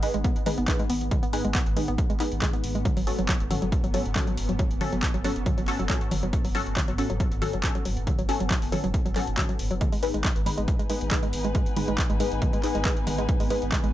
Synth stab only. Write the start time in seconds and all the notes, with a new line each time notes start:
0.03 D#4 G#4 B4
0.46 D#4 G#4 B4
0.68 D#4 G#4 B4
1.33 D#4 G#4 B4
1.77 D#4 G#4 B4
2.20 D#4 G#4 B4
2.42 D#4 G#4 B4
3.07 C#4 F#4 A4
3.50 C#4 F#4 A4
3.94 C#4 F#4 A4
4.16 C#4 F#4 A4
4.81 C#4 F#4 A4
5.24 C#4 F#4 A4
5.68 C#4 F#4 A4
5.90 C#4 F#4 A4
6.55 C#4 F#4 A4
6.98 C#4 F#4 A4
7.42 C#4 F#4 A4
7.64 C#4 F#4 A4
8.29 C#4 F#4 A4
8.72 C#4 F#4 A4
9.16 C#4 F#4 A4
9.38 C#4 F#4 A4
10.03 D#4 G#4 B4
10.46 D#4 G#4 B4
10.90 D#4 G#4 B4
11.11 D#4 G#4 B4
11.77 D#4 G#4 B4
12.20 D#4 G#4 B4
12.63 D#4 G#4 B4
12.85 D#4 G#4 B4
13.50 D#4 G#4 B4